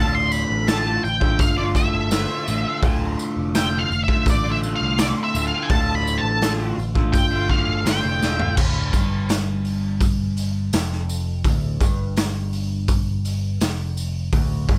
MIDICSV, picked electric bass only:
0, 0, Header, 1, 2, 480
1, 0, Start_track
1, 0, Key_signature, -1, "minor"
1, 0, Tempo, 718563
1, 1894, Time_signature, 4, 2, 24, 8
1, 9876, End_track
2, 0, Start_track
2, 0, Title_t, "Picked electric bass"
2, 0, Program_c, 0, 34
2, 0, Note_on_c, 0, 26, 92
2, 288, Note_off_c, 0, 26, 0
2, 336, Note_on_c, 0, 33, 86
2, 649, Note_off_c, 0, 33, 0
2, 697, Note_on_c, 0, 33, 88
2, 905, Note_off_c, 0, 33, 0
2, 930, Note_on_c, 0, 31, 88
2, 1245, Note_off_c, 0, 31, 0
2, 1292, Note_on_c, 0, 31, 99
2, 1502, Note_off_c, 0, 31, 0
2, 1659, Note_on_c, 0, 33, 93
2, 1761, Note_off_c, 0, 33, 0
2, 1888, Note_on_c, 0, 26, 98
2, 2100, Note_off_c, 0, 26, 0
2, 2249, Note_on_c, 0, 29, 76
2, 2564, Note_off_c, 0, 29, 0
2, 2608, Note_on_c, 0, 29, 94
2, 2715, Note_off_c, 0, 29, 0
2, 2848, Note_on_c, 0, 33, 90
2, 3163, Note_off_c, 0, 33, 0
2, 3213, Note_on_c, 0, 36, 92
2, 3421, Note_off_c, 0, 36, 0
2, 3572, Note_on_c, 0, 26, 105
2, 3676, Note_off_c, 0, 26, 0
2, 3807, Note_on_c, 0, 26, 103
2, 4122, Note_off_c, 0, 26, 0
2, 4165, Note_on_c, 0, 33, 85
2, 4480, Note_off_c, 0, 33, 0
2, 4531, Note_on_c, 0, 33, 85
2, 4739, Note_off_c, 0, 33, 0
2, 4769, Note_on_c, 0, 31, 99
2, 5082, Note_off_c, 0, 31, 0
2, 5130, Note_on_c, 0, 31, 96
2, 5234, Note_off_c, 0, 31, 0
2, 5248, Note_on_c, 0, 31, 89
2, 5357, Note_off_c, 0, 31, 0
2, 5370, Note_on_c, 0, 29, 87
2, 5478, Note_off_c, 0, 29, 0
2, 5493, Note_on_c, 0, 28, 89
2, 5599, Note_off_c, 0, 28, 0
2, 5613, Note_on_c, 0, 26, 91
2, 5719, Note_off_c, 0, 26, 0
2, 5727, Note_on_c, 0, 26, 93
2, 5951, Note_off_c, 0, 26, 0
2, 5969, Note_on_c, 0, 31, 95
2, 7142, Note_off_c, 0, 31, 0
2, 7169, Note_on_c, 0, 29, 94
2, 7623, Note_off_c, 0, 29, 0
2, 7647, Note_on_c, 0, 26, 94
2, 7872, Note_off_c, 0, 26, 0
2, 7889, Note_on_c, 0, 31, 88
2, 9065, Note_off_c, 0, 31, 0
2, 9095, Note_on_c, 0, 29, 87
2, 9548, Note_off_c, 0, 29, 0
2, 9571, Note_on_c, 0, 26, 84
2, 9796, Note_off_c, 0, 26, 0
2, 9813, Note_on_c, 0, 31, 97
2, 9876, Note_off_c, 0, 31, 0
2, 9876, End_track
0, 0, End_of_file